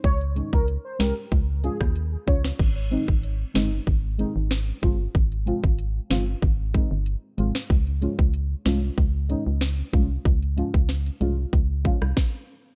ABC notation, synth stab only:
X:1
M:4/4
L:1/8
Q:1/4=94
K:Ab
V:1 name="Synth stab"
z [A,DE] z [A,DG] z [A,DF] z [A,DF] | z [A,CE] z [A,CE] z [A,CE] z [A,CF] | z [A,CF] z [A,CF] z [A,CE] z [A,CF] | z [A,DF] z [A,DF] z [A,DE] z [A,DF] |
z [A,DF] z [A,DF] z [A,DF] z2 |]